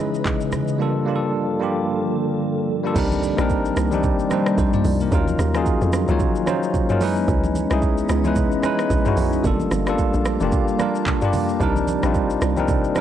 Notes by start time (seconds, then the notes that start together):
Already playing: C#2 C#3 E3 G#3 C#4 D#4 E4 G#4 B4 D#5
0.14 shaker
0.25 kick, clap, low conga, shaker
0.41 shaker
0.52 cross-stick, high conga, low conga, shaker
0.68 shaker
0.79 G2 D3 F3 G3 A#3 D4 F4 A4
1.06 G3 A#3 D4 F4 G4
1.16 A4
1.60 G3 A#3 D4 F4 G4
2.83 G3 A#3 D4 F4 A4
2.95 C2 C3 D#3 G3 A#3 C4 D4 D#4 A#4 D5, kick, crash, low conga, shaker
3.11 high conga, shaker
3.23 high conga, shaker
3.37 A#1 G3 C4 D4 D#4 A#4, cross-stick, shaker
3.50 kick, shaker
3.65 shaker
3.77 C2, cross-stick, shaker
3.92 G3 C4 D4 D#4 G4, high conga, shaker
4.03 kick, low conga, shaker
4.19 shaker
4.30 G3 C4 D4 D#4 C5, cross-stick, high conga, shaker
4.46 cross-stick, shaker
4.58 A#1 D#4 C5, kick, low conga, shaker
4.73 F4 D5, mid tom, shaker
4.85 C2, open hi-hat, high conga, shaker
5.00 D4 A#4, shaker
5.11 D#2 D#3 F#3 C#4 D#4 F4 A#4, kick, low conga, shaker
5.27 high conga, shaker
5.39 D#2, cross-stick, high conga, shaker
5.54 F3 C#4 D#4 F4 G#4, cross-stick, shaker
5.60 F#3
5.66 kick, shaker
5.81 F2, shaker
5.93 cross-stick, shaker
6.08 C#2 F#3 C#4 D#4 F4 C#5, high conga, shaker
6.20 kick, low conga, shaker
6.36 shaker
6.46 F#3 C#4 D#4 F4 C5, cross-stick, high conga, shaker
6.63 shaker
6.74 kick, low conga, shaker
6.89 F#3 C#4 D#4 F4 A#4, mid tom, shaker
7.00 E3 G#3 B3 C#4 D#4 E4 B4 D#5, open hi-hat, high conga, shaker
7.16 shaker
7.28 C#2, kick, low conga, shaker
7.44 high conga, shaker
7.55 high conga, shaker
7.70 C2 G#3 C#4 D#4 E4 G#4, cross-stick, shaker
7.82 kick, shaker
7.98 shaker
8.09 C#2, cross-stick, shaker
8.24 G#3 C#4 D#4 E4 B4, high conga, shaker
8.36 kick, low conga, shaker
8.52 shaker
8.62 G#3 C#4 D#4 E4 B4, cross-stick, high conga, shaker
8.79 cross-stick, shaker
8.90 A#1, kick, low conga, shaker
9.05 G#3 C#4 D#4 E4 F#4, mid tom, shaker
9.17 B1, open hi-hat, high conga, shaker
9.33 shaker
9.43 G1 G3 A#3 D4 F4 A4 D5 A5, kick, low conga, shaker
9.60 high conga, shaker
9.71 G1, cross-stick, high conga, shaker
9.86 G3 A#3 D4 F4 A4, cross-stick, shaker
9.98 kick, shaker
10.14 A#1, high conga, shaker
10.25 cross-stick, shaker
10.40 F1 G3 A#3 D4 F4 G4, high conga, shaker
10.52 kick, low conga, shaker
10.68 shaker
10.79 G3 A#3 D4 F4 A#4, cross-stick, high conga, shaker
10.95 shaker
11.06 kick, clap, low conga, shaker
11.21 G3 A#3 D4 F4 G4, mid tom, shaker
11.33 open hi-hat, high conga, low conga, shaker
11.49 shaker
11.60 C2 C3 D#3 G3 A#3 C4 D4 D#4 A#4, kick, low conga, shaker
11.76 high conga, shaker
11.87 high conga, shaker
12.02 A#1 G3 C4 D4 D#4 F4, cross-stick, shaker
12.15 kick, shaker
12.30 shaker
12.41 C2, cross-stick, shaker
12.56 G3 C4 D4 D#4 A#4, high conga, shaker
12.68 kick, low conga, shaker
12.84 shaker
12.95 G3 C4 D4 D#4, cross-stick, high conga, shaker